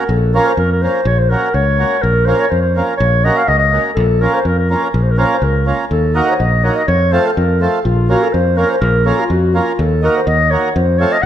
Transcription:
0.00 0.11 A#4 medium
0.09 0.38 A#1 loud
0.09 0.35 A4 medium
0.34 0.52 A#3 medium
0.34 0.52 C#4 medium
0.34 0.52 F4 medium
0.34 0.48 A#4 medium
0.34 0.53 A#4 medium
0.46 0.57 C5 medium
0.57 0.86 F2 medium
0.57 0.70 A#4 medium
0.72 0.83 A#4 medium
0.82 1.00 A#3 medium
0.82 1.01 C#4 soft
0.82 1.01 F4 soft
0.82 1.01 A#4 medium
0.82 1.08 C5 medium
1.05 1.34 A#1 loud
1.05 1.20 C#5 medium
1.19 1.31 C5 medium
1.30 1.48 A#3 medium
1.30 1.48 C#4 medium
1.30 1.49 F#4 medium
1.30 1.56 A#4 medium
1.30 1.49 A#4 medium
1.54 1.83 C#2 medium
1.54 2.03 C#5 medium
1.78 1.96 A#3 medium
1.78 1.97 C#4 soft
1.78 1.97 F#4 soft
1.78 1.97 A#4 medium
2.02 2.32 A#1 medium
2.02 2.27 A#4 medium
2.25 2.45 A#3 medium
2.25 2.45 C#4 medium
2.25 2.45 F4 medium
2.25 2.46 A#4 medium
2.25 2.41 C5 medium
2.39 2.49 C#5 medium
2.49 2.80 F2 medium
2.49 2.61 C5 medium
2.61 2.85 C5 medium
2.75 2.93 A#3 medium
2.75 2.94 C#4 soft
2.75 2.94 F4 medium
2.75 2.95 A#4 medium
2.97 3.29 A#1 loud
2.97 3.26 C#5 medium
3.24 3.42 A#3 medium
3.24 3.42 C#4 medium
3.24 3.43 F#4 medium
3.24 3.43 A#4 medium
3.24 3.38 D#5 medium
3.37 3.49 F5 loud
3.48 3.77 C#2 medium
3.48 3.58 D#5 loud
3.58 3.82 D#5 medium
3.72 3.91 A#3 soft
3.72 3.91 C#4 soft
3.72 3.91 F#4 soft
3.72 3.92 A#4 soft
3.94 4.26 A#1 medium
3.94 4.22 A4 medium
4.20 4.39 A#3 medium
4.20 4.39 C#4 medium
4.20 4.40 F4 medium
4.20 4.36 A#4 medium
4.20 4.40 A#4 medium
4.34 4.48 C5 medium
4.45 4.74 F2 medium
4.45 4.58 A#4 medium
4.59 4.69 A#4 medium
4.69 4.88 A#3 medium
4.69 4.88 C#4 soft
4.69 4.88 F4 soft
4.69 4.89 A#4 medium
4.82 4.87 A#4 medium
4.94 5.23 A#1 loud
4.94 5.04 A#4 medium
5.03 5.12 C5 medium
5.11 5.20 A#4 medium
5.17 5.36 A#3 medium
5.17 5.36 C#4 medium
5.17 5.37 F4 medium
5.17 5.37 A#4 medium
5.17 5.27 C5 medium
5.26 5.36 A#4 medium
5.34 5.45 C5 medium
5.42 5.71 C#2 medium
5.42 5.67 A#4 medium
5.66 5.85 A#3 soft
5.66 5.85 C#4 medium
5.66 5.85 F4 soft
5.66 5.85 A#4 medium
5.91 6.20 D#2 medium
5.91 6.17 A4 medium
6.14 6.33 A#3 medium
6.14 6.33 D#4 medium
6.14 6.34 F#4 medium
6.14 6.31 A#4 medium
6.14 6.34 A#4 medium
6.29 6.33 C5 medium
6.29 6.35 C#5 medium
6.34 6.41 C5 medium
6.40 6.69 A#1 medium
6.40 6.65 D#5 medium
6.63 6.82 A#3 medium
6.63 6.82 D#4 medium
6.63 6.82 F#4 medium
6.63 6.83 A#4 medium
6.63 6.78 C#5 medium
6.76 6.87 D#5 medium
6.87 7.17 F2 medium
6.87 7.14 C#5 medium
7.11 7.30 A3 medium
7.11 7.31 C4 medium
7.11 7.31 F4 medium
7.11 7.31 A4 medium
7.11 7.28 C5 medium
7.26 7.38 A4 medium
7.37 7.66 F2 medium
7.37 7.62 A#4 medium
7.60 7.79 A3 medium
7.60 7.79 C4 medium
7.60 7.79 F4 soft
7.60 7.86 A4 medium
7.60 7.80 A4 medium
7.85 8.14 A#1 medium
7.85 8.11 F4 medium
8.08 8.27 A#3 medium
8.08 8.28 C#4 medium
8.08 8.28 F4 medium
8.08 8.24 F#4 medium
8.08 8.28 A#4 medium
8.23 8.34 A4 medium
8.32 8.63 F2 medium
8.32 8.59 C5 medium
8.56 8.75 A#3 medium
8.56 8.75 C#4 medium
8.56 8.76 F4 soft
8.56 8.71 A#4 medium
8.56 8.76 A#4 medium
8.70 8.80 C5 medium
8.80 9.10 A#1 loud
8.80 9.07 A#4 medium
9.05 9.24 A#3 medium
9.05 9.24 C#4 medium
9.05 9.24 F4 medium
9.05 9.22 A4 medium
9.05 9.24 A#4 medium
9.20 9.33 F4 medium
9.30 9.59 F2 medium
9.30 9.57 F#4 medium
9.54 9.72 A#3 medium
9.54 9.72 C#4 soft
9.54 9.73 F4 soft
9.54 9.82 F4 medium
9.54 9.73 A#4 medium
9.79 10.07 D#2 loud
9.79 10.07 A4 medium
10.02 10.20 A#3 medium
10.02 10.20 D#4 medium
10.02 10.21 F#4 medium
10.02 10.21 A#4 medium
10.02 10.16 A#4 medium
10.17 10.29 C5 medium
10.27 10.55 D#2 loud
10.27 10.52 D#5 loud
10.50 10.68 A#3 medium
10.50 10.69 D#4 soft
10.50 10.69 F#4 medium
10.50 10.69 A#4 medium
10.50 10.74 C#5 medium
10.76 11.04 F2 loud
10.76 11.00 C5 medium
10.98 11.17 A3 medium
10.98 11.17 C4 medium
10.98 11.17 F4 medium
10.98 11.18 A4 medium
10.98 11.14 C#5 loud
11.12 11.23 D#5 medium
11.22 11.26 F#5 loud

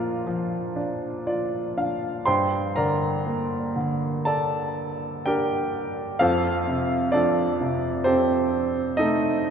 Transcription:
0.00 2.23 A#2 medium
0.00 0.25 F3 soft
0.00 0.75 D4 soft
0.00 1.25 F4 soft
0.00 0.22 A#4 medium
0.00 1.27 D5 medium
0.00 1.78 F5 medium
0.00 0.21 A#5 medium
0.27 2.24 F3 soft
0.76 1.76 D4 soft
1.27 2.25 F4 soft
1.27 1.74 D5 soft
1.77 2.26 D4 soft
1.77 2.24 F5 soft
2.26 6.17 G2 soft
2.26 2.73 C5 soft
2.26 2.73 G5 soft
2.26 2.77 C6 medium
2.76 3.74 D3 soft
2.76 4.23 A#4 soft
2.76 4.23 D5 soft
2.76 4.31 A#5 medium
3.26 5.23 A#3 soft
3.76 5.70 D3 soft
4.25 5.22 A4 soft
4.25 5.22 D5 soft
4.25 5.29 A5 medium
5.26 6.18 D4 soft
5.26 6.18 G4 medium
5.26 6.18 A#4 medium
5.26 6.17 G5 medium
6.19 9.50 F2 medium
6.19 7.10 F4 soft
6.19 7.09 A4 medium
6.19 7.10 C5 medium
6.19 7.16 F5 medium
6.67 7.59 C3 soft
7.12 8.95 F3 soft
7.12 8.02 D4 soft
7.12 8.03 A4 soft
7.12 8.08 D5 medium
7.61 9.41 C3 soft
8.04 8.95 C4 soft
8.04 8.95 G4 soft
8.04 8.95 A4 soft
8.04 9.01 C5 medium
8.97 9.50 A3 soft
8.97 9.50 D#4 medium
8.97 9.50 A4 medium
8.97 9.50 D#5 medium

